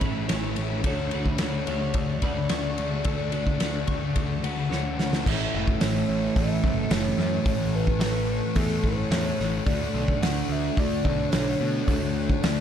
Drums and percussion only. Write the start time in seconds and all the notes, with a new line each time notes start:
0.01 kick, ride
0.29 snare, ride
0.56 ride
0.84 kick, ride
1.11 ride
1.26 kick
1.38 snare, ride
1.67 ride
1.94 kick, ride
2.22 kick, ride
2.49 snare, ride
2.78 ride
3.04 kick, ride
3.32 ride
3.47 kick
3.60 snare, ride
3.87 kick, ride
4.16 kick, ride
4.44 ride
4.72 snare
4.99 snare
5.13 snare
5.26 kick, crash
5.68 kick
5.81 snare, open hi-hat
6.36 kick, open hi-hat
6.64 kick
6.91 snare, open hi-hat
7.19 snare
7.46 kick, open hi-hat
7.87 kick
8.01 snare, open hi-hat
8.56 kick, open hi-hat
8.84 kick
9.11 snare, open hi-hat
9.40 snare
9.66 kick, open hi-hat
10.08 kick
10.23 snare, open hi-hat
10.77 kick, open hi-hat
11.05 kick
11.32 snare, open hi-hat
11.88 kick, open hi-hat
12.30 kick
12.43 snare, open hi-hat